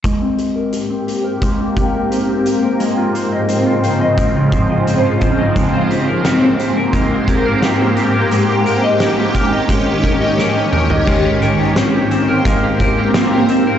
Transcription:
0.03 G#2 G#3 A#3 C4 G4, kick, closed hi-hat
0.22 C4
0.39 G4, closed hi-hat
0.56 A#4
0.73 G4, closed hi-hat
0.90 C4
1.07 G4, closed hi-hat
1.24 A#4
1.42 G#3, kick, closed hi-hat
1.59 C4
1.77 G4, kick, closed hi-hat
1.94 A#4
2.11 G4, closed hi-hat
2.29 C4
2.46 G4, closed hi-hat
2.63 A#4
2.80 C#3 F3 G#3, closed hi-hat
2.97 F4
3.15 C5, closed hi-hat
3.32 D#5
3.49 C5, closed hi-hat
3.66 F4
3.84 C5, closed hi-hat
4.01 D#5
4.18 G#3, kick, closed hi-hat
4.36 F4
4.52 C5, kick, closed hi-hat
4.70 D#5
4.87 C5, closed hi-hat
5.05 F4
5.21 C5, kick, closed hi-hat
5.39 D#5
5.56 G#3 A#3 G4, kick, closed hi-hat
5.73 C4
5.91 G4, closed hi-hat
6.07 A#4
6.25 G4, snare, closed hi-hat
6.42 C4
6.59 G4, closed hi-hat
6.77 A#4
6.93 G#3, kick, closed hi-hat
7.12 C4
7.28 G4, kick, closed hi-hat
7.45 A#4
7.62 G4, snare, closed hi-hat
7.80 C4
7.97 G4, closed hi-hat
8.14 A#4
8.31 D#3 G#3 C#4, closed hi-hat
8.49 G4
8.66 A#4, closed hi-hat
8.84 D#5
9.00 A#4, snare, closed hi-hat
9.18 G4
9.35 A#4, kick, closed hi-hat
9.52 D#5
9.69 G#3, kick, closed hi-hat
9.87 G4
10.04 A#4, kick, closed hi-hat
10.21 D#5
10.38 A#4, snare
10.55 G4
10.73 A#4, mid tom
10.90 D#5, floor tom
11.07 G#2 G#3 A#3 C4 G4 A#4, kick, crash
11.25 G4
11.42 A#4, closed hi-hat
11.60 G4
11.76 C4, snare, closed hi-hat
11.94 G4
12.11 C4, closed hi-hat
12.28 A#4
12.45 G#3 A#4, kick, closed hi-hat
12.63 G4
12.80 A#4, kick, closed hi-hat
12.98 G4
13.14 C4, snare, closed hi-hat
13.33 G4
13.49 C4, closed hi-hat
13.67 A#4

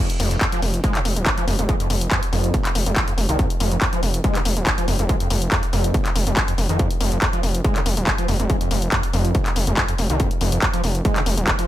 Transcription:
0.10 closed hi-hat
0.20 F1 F2, open hi-hat
0.31 F2, closed hi-hat
0.41 F2, kick, clap, closed hi-hat
0.52 F3, closed hi-hat
0.62 F1, open hi-hat
0.74 closed hi-hat
0.84 G#3, kick, closed hi-hat
0.95 C3, clap, closed hi-hat
1.05 F1, open hi-hat
1.16 D#1, closed hi-hat
1.26 G#2, kick, clap, closed hi-hat
1.37 F3, closed hi-hat
1.47 F1 F2, open hi-hat
1.59 F1 F2, closed hi-hat
1.69 G#3, kick, closed hi-hat
1.80 F2, closed hi-hat
1.90 F1 F2, open hi-hat
2.01 closed hi-hat
2.11 F2, kick, clap, closed hi-hat
2.23 closed hi-hat
2.33 F1 F2, open hi-hat
2.44 closed hi-hat
2.54 C3, kick, closed hi-hat
2.65 clap, closed hi-hat
2.75 F1, open hi-hat
2.86 F1 F2, closed hi-hat
2.96 kick, clap, closed hi-hat
3.08 F2, closed hi-hat
3.18 F1, open hi-hat
3.29 C2 D#3, closed hi-hat
3.39 F2, kick, closed hi-hat
3.50 closed hi-hat
3.60 F1 F2, open hi-hat
3.72 F2, closed hi-hat
3.82 F2, kick, clap, closed hi-hat
3.93 F3, closed hi-hat
4.03 F1, open hi-hat
4.14 closed hi-hat
4.24 G#3, kick, closed hi-hat
4.35 C3, clap, closed hi-hat
4.45 F1, open hi-hat
4.57 D#1, closed hi-hat
4.67 G#2, kick, clap, closed hi-hat
4.78 F3, closed hi-hat
4.88 F1 F2, open hi-hat
4.99 F1 F2, closed hi-hat
5.09 G#3, kick, closed hi-hat
5.20 F2, closed hi-hat
5.30 F1 F2, open hi-hat
5.42 closed hi-hat
5.52 F2, kick, clap, closed hi-hat
5.63 closed hi-hat
5.73 F1 F2, open hi-hat
5.84 closed hi-hat
5.94 C3, kick, closed hi-hat
6.06 clap, closed hi-hat
6.15 F1, open hi-hat
6.27 F1 F2, closed hi-hat
6.37 kick, clap, closed hi-hat
6.48 F2, closed hi-hat
6.58 F1, open hi-hat
6.69 F2 D#3, closed hi-hat
6.79 F2, kick, closed hi-hat
6.91 closed hi-hat
7.01 F1 F2, open hi-hat
7.12 F2, closed hi-hat
7.22 F2, kick, clap, closed hi-hat
7.33 F3, closed hi-hat
7.43 F1, open hi-hat
7.55 closed hi-hat
7.64 G#3, kick, closed hi-hat
7.76 C3, clap, closed hi-hat
7.86 F1, open hi-hat
7.97 D#1, closed hi-hat
8.07 G#2, kick, clap, closed hi-hat
8.18 F3, closed hi-hat
8.28 F1 F2, open hi-hat
8.40 F1 F2, closed hi-hat
8.50 G#3, kick, closed hi-hat
8.61 F2, closed hi-hat
8.71 F1 F2, open hi-hat
8.82 closed hi-hat
8.92 F2, kick, clap, closed hi-hat
9.03 closed hi-hat
9.13 F1 F2, open hi-hat
9.25 closed hi-hat
9.35 C3, kick, closed hi-hat
9.46 clap, closed hi-hat
9.56 F1, open hi-hat
9.67 F1 F2, closed hi-hat
9.77 F2, kick, clap, closed hi-hat
9.88 F2, closed hi-hat
9.98 F1, open hi-hat
10.10 C2 D#3, closed hi-hat
10.20 F2, kick, closed hi-hat
10.31 closed hi-hat
10.41 F1 F2, open hi-hat
10.52 F2, closed hi-hat
10.62 F2, kick, clap, closed hi-hat
10.74 F3, closed hi-hat
10.84 F1, open hi-hat
10.95 closed hi-hat
11.05 G#3, kick, closed hi-hat
11.16 C3, clap, closed hi-hat
11.26 F1, open hi-hat
11.37 D#1, closed hi-hat
11.47 G#2, kick, clap, closed hi-hat
11.59 F3, closed hi-hat

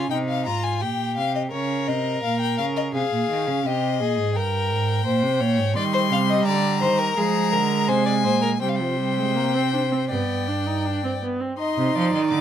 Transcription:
0.10 C3 D#4 G5
0.29 F5
0.46 G#2 F4 A#5
0.63 G#5
0.81 A#2 G4 G5
1.17 C3 F5
1.35 D#5
1.52 C#3 A#4 C#5
1.88 C3 D#5
2.23 A#2 F5
2.40 G5
2.58 C#3 F5
2.76 D#5
2.94 C3 G#4 F5
3.12 A#2
3.29 D#3
3.47 C#3
3.65 C3 G4 D#5
4.00 A#2 G#4
4.18 G#2
4.35 G2 A#4 G5
4.70 G#2
5.05 A#2 C5
5.23 C3
5.40 A#2 C#5
5.58 G#2
5.76 D#3 G3 D5 C6
5.93 C5
6.11 C3 F5
6.29 D#5
6.46 D3 D5 A#5
6.82 D#3 C5
6.99 A#4
7.17 F3 G#3 G#4
7.52 D3 A#4
7.88 C3 C5 G#5
8.06 D5
8.24 A#2 C5
8.42 A#4
8.60 C3 G3 C5 G5
8.68 F5
8.76 G5
8.80 F3
8.99 G3
9.18 G#3
9.35 A#3
9.55 C4
9.73 D4
9.92 C4
10.10 G2 B3 D5 G5
10.48 D4
10.67 D#4
10.85 D4
11.04 C4
11.23 B3
11.40 C4
11.58 D#4 D#5 C6
11.78 C3
11.95 F3 D5
12.14 D#3
12.31 D3 D6

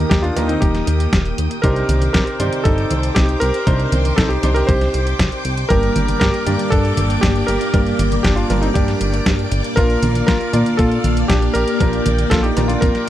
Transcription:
Already playing: D#3 A#3 D#4 G4 A#4 G5 D#6
0.10 D#2 D#4 G4, kick, snare, closed hi-hat
0.22 D4 F4, closed hi-hat
0.36 D#2 D#3 A#3 D#4 G4 A#4, snare, closed hi-hat, high conga
0.48 C4 D#4, closed hi-hat
0.61 D#1 D#4 G4, kick, closed hi-hat
0.75 snare, closed hi-hat
0.87 D#2, closed hi-hat
1.00 closed hi-hat
1.13 D#1, kick, snare, closed hi-hat
1.25 closed hi-hat
1.38 D#2, closed hi-hat
1.51 closed hi-hat
1.62 C2 C3 D4 D#4 G4 A#4 C5 D6, kick, closed hi-hat
1.76 closed hi-hat
1.89 C2, closed hi-hat, high conga
2.02 closed hi-hat, high conga
2.13 C2 G4 A#4, kick, snare, closed hi-hat
2.27 closed hi-hat
2.40 G1 C3 D#4 G4 C5 D5, closed hi-hat, high conga
2.53 closed hi-hat
2.64 G1 D#4 A4, kick, closed hi-hat
2.78 closed hi-hat
2.91 C2, closed hi-hat, high conga
3.03 closed hi-hat
3.15 C2 D#4 G4, kick, snare, closed hi-hat
3.29 closed hi-hat
3.40 C2 G4 A#4, closed hi-hat
3.54 closed hi-hat
3.67 C2 C3 D4 D#4 G4 C5, kick, closed hi-hat
3.80 closed hi-hat
3.92 C2, closed hi-hat, high conga
4.05 closed hi-hat, high conga
4.16 C2 D#4 A4, kick, snare, closed hi-hat
4.29 D#4 G4, closed hi-hat
4.43 C2 C3 D4 D#4 G4 C5, snare, closed hi-hat, high conga
4.54 G4 A#4, closed hi-hat
4.67 C2 G4 C5, kick, closed hi-hat
4.81 snare, closed hi-hat
4.94 C2, closed hi-hat
5.07 closed hi-hat
5.19 C2, kick, snare, closed hi-hat
5.32 closed hi-hat
5.45 C2, closed hi-hat
5.58 closed hi-hat
5.69 G1 G2 A#3 D4 G4 A#4 D5, kick, closed hi-hat
5.83 closed hi-hat
5.96 G1, closed hi-hat, high conga
6.08 closed hi-hat, high conga
6.20 G1 G4 A#4, kick, snare, closed hi-hat
6.34 closed hi-hat
6.46 G2 A#3 D4 G4 D5, closed hi-hat, high conga
6.59 closed hi-hat
6.70 G2 D4 A4, kick, closed hi-hat
6.85 closed hi-hat
6.97 G1, closed hi-hat, high conga
7.10 closed hi-hat
7.21 G1 D4 G4, kick, snare, closed hi-hat
7.36 closed hi-hat
7.47 G1 G4 A#4, closed hi-hat
7.61 closed hi-hat
7.74 G1 G2 A#3 D4 G4 A#4, kick, closed hi-hat
7.87 closed hi-hat
7.99 G1, closed hi-hat, high conga
8.12 closed hi-hat, high conga
8.23 G1 D4 G4, kick, snare, closed hi-hat
8.36 D4 F4, closed hi-hat
8.50 G1 G2 A#3 D4 G4 A#4, snare, closed hi-hat, high conga
8.62 C4 D#4, closed hi-hat
8.74 G2 D4 G4, kick, closed hi-hat
8.88 snare, closed hi-hat
9.01 G1, closed hi-hat
9.14 closed hi-hat
9.26 G2, kick, snare, closed hi-hat
9.39 closed hi-hat
9.52 G1, closed hi-hat
9.64 closed hi-hat
9.76 A#1 A#2 A#3 D4 F4 A#4 F5, kick, closed hi-hat
9.90 closed hi-hat
10.03 A#1, closed hi-hat, high conga
10.15 closed hi-hat, high conga
10.27 A#1 F4 A#4, kick, snare, closed hi-hat
10.41 closed hi-hat
10.53 A#2 A#3 D4 F4 D5, closed hi-hat, high conga
10.66 closed hi-hat
10.77 A#2 F4 A4, kick, closed hi-hat
10.92 closed hi-hat
11.04 A#1, closed hi-hat, high conga
11.17 closed hi-hat
11.28 A#1 D4 G4, kick, snare, closed hi-hat
11.42 closed hi-hat
11.54 A#1 G4 A#4, closed hi-hat
11.68 closed hi-hat
11.80 A#1 A#2 A#3 D4 F4 A#4 G5, kick, closed hi-hat
11.93 closed hi-hat
12.06 A#1, closed hi-hat, high conga
12.18 closed hi-hat, high conga
12.30 A#1 F4 A4, kick, snare, closed hi-hat
12.43 D#4 G4, closed hi-hat
12.57 A#1 A#2 A#3 D4 F4 A#4, snare, closed hi-hat, high conga
12.68 D4 F4, closed hi-hat
12.81 F2 F4 A#4, kick, closed hi-hat
12.95 snare, closed hi-hat

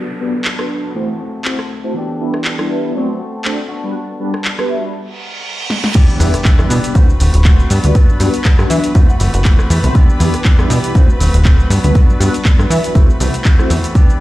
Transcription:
Already playing: F#3 B3 D4 F#4 A4 A5, downlifter
0.20 G3 B3 D4 F#4 B4
0.45 clap
0.58 B3 D4 F#4 B4, cross-stick
0.94 E3 A3 C4 E4 F#4 C5
1.19 A3 C4 F#4
1.44 A3 C4 E4 F#4 C5, clap
1.59 cross-stick
1.83 A3 C4 E4 F#4 C5
1.94 E3 B3 D4
1.98 G4
2.19 G3 B3 D4 E4 B4
2.34 cross-stick
2.45 clap
2.58 G3 B3 D4 E4 B4, cross-stick
2.94 F#3 A3 C4 D4 F#4 C5
3.19 A3 C4 F#4
3.45 A3 C4 D4 F#4 C5, clap
3.69 D4 F#4
3.74 B3
3.83 G3 B3 D4 F#4 B4
4.19 G3 B3 D4 F#4 B4
4.34 cross-stick
4.45 clap
4.58 G3 B3 D4 F#4 B4, cross-stick
4.70 E5
4.95 reverse cymbal
5.70 snare
5.84 snare
5.95 E3 B3 D4 G4 B4 B5, kick, closed hi-hat, crash, impact, cabasa
6.10 cabasa
6.19 E2 E3 G3 B3 D4 E4 G4 B4, open hi-hat, cabasa
6.33 B3 D4 G4, cross-stick, closed hi-hat, cabasa
6.45 E3 B3 D4 G4, kick, clap, closed hi-hat, cabasa
6.59 E2 G3 B3 D4 E4 B4, cross-stick, cabasa
6.69 B2 E3 B3 D4 G4, open hi-hat, cabasa
6.84 closed hi-hat, cabasa
6.94 D2 A3 C4 D4 F#4 C5, kick, closed hi-hat, cabasa
7.08 D1 C4 F#4, cabasa
7.19 D1 A3 C4 F#4, open hi-hat, cabasa
7.33 D1 C4 F#4, closed hi-hat, cabasa
7.45 A3 C4 D4 F#4 C5, kick, clap, closed hi-hat, cabasa
7.60 cabasa
7.69 G2 F#3 B3 D4 F#4, open hi-hat, cabasa
7.83 D2 G3 B3 D4 F#4 B4, closed hi-hat, cabasa
7.94 F#3 B3 D4 F#4, kick, closed hi-hat, cabasa
8.09 G2, cabasa
8.19 G2 F#3 G3 B3 D4 F#4 B4, open hi-hat, cabasa
8.33 B3 D4 F#4, closed hi-hat, cabasa
8.44 F#3 B3 D4 F#4, kick, clap, closed hi-hat, cabasa
8.59 G2 B3 D4 F#4 B4, cross-stick, cabasa
8.69 E3 F#3 B3 D4 F#4 E5, open hi-hat, cabasa
8.84 closed hi-hat, cabasa
8.95 F#2 E3 A3 C4 E4 F#4 C5, kick, closed hi-hat, cabasa
9.08 F#1 A3 C4 F#4 F#5, cabasa
9.19 F#1 E3 A3 C4 F#4 F#5, open hi-hat, cabasa
9.33 F#1 A3 C4 F#4, closed hi-hat, cabasa
9.45 E3 A3 C4 E4 F#4 C5, kick, clap, closed hi-hat, cabasa
9.59 cross-stick, cabasa
9.69 E2 E3 A3 C4 F#4, open hi-hat, cabasa
9.83 C2 A3 C4 E4 F#4 C5, closed hi-hat, cabasa
9.95 E3 B3 D4 G4, kick, closed hi-hat, cabasa
10.10 cabasa
10.19 E2 E3 G3 B3 D4 E4 G4 B4, open hi-hat, cabasa
10.33 B3 D4 G4, cross-stick, closed hi-hat, cabasa
10.45 E3 B3 D4 G4, kick, clap, closed hi-hat, cabasa
10.58 E2 G3 B3 D4 E4 B4, cross-stick, cabasa
10.70 B2 E3 B3 D4 G4, open hi-hat, cabasa
10.84 closed hi-hat, cabasa
10.94 D2 F#3 A3 C4 D4 F#4 C5, kick, closed hi-hat, cabasa
11.08 D1 A3 C4 F#4, cabasa
11.20 D1 F#3 A3 C4 F#4, open hi-hat, cabasa
11.33 D1 A3 C4 F#4, closed hi-hat, cabasa
11.45 F#3 A3 C4 D4 F#4 C5, kick, clap, closed hi-hat, cabasa
11.60 cabasa
11.69 G2 F#3 B3 D4 F#4, open hi-hat, cabasa
11.83 D2 G3 B3 D4 F#4 B4, closed hi-hat, cabasa
11.95 F#3 B3 D4 F#4, kick, closed hi-hat, cabasa
12.09 G2, cabasa
12.20 G2 F#3 G3 B3 D4 F#4 B4, open hi-hat, cabasa
12.33 B3 D4 F#4, closed hi-hat, cabasa
12.45 F#3 B3 D4 F#4, kick, clap, closed hi-hat, cabasa
12.59 G2 B3 D4 F#4 B4, cross-stick, cabasa
12.69 E3 F#3 B3 D4 F#4 E5, open hi-hat, cabasa
12.84 closed hi-hat, cabasa
12.95 F#1 E3 A3 C4 E4 F#4 C5, kick, closed hi-hat, cabasa
13.08 C2 A3 C4 F#4, cabasa
13.20 C2 E3 A3 C4 E4 F#4 E5, open hi-hat, cabasa
13.33 A3 C4 F#4, closed hi-hat, cabasa
13.45 E3 A3 C4 F#4, kick, clap, closed hi-hat, cabasa
13.59 A3 C4 E4 F#4 C5, cross-stick, cabasa
13.70 E2 E3 A3 C4 F#4, open hi-hat, cabasa
13.84 closed hi-hat, cabasa
13.95 E3 B3 D4 G4 B4 B5, kick, closed hi-hat, cabasa
14.10 cabasa

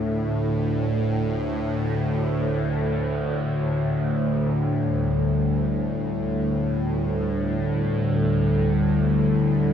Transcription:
Already playing: D2 A2 D4 A4 E5
3.16 D3
4.48 G3
6.15 A4
6.24 D4

